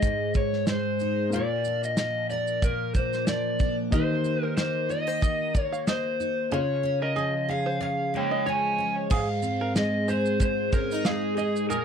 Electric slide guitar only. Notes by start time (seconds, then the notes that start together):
Already playing: D#5
0.37 C#5
0.69 C5
1.34 D5
1.85 D#5
2.30 D5
2.64 A#4
2.96 C5
3.28 D5
3.94 C5
4.44 A#4
4.57 C5
4.90 D#5
5.61 C#5
5.89 C5
6.53 C#5
7.03 D#5
7.50 F5
7.83 F5
8.17 C#5 G5
8.49 G#5
9.14 F5
9.77 D#5
10.10 C5
10.42 C5
10.74 A#4
11.05 G#4
11.38 G#4
11.70 A#4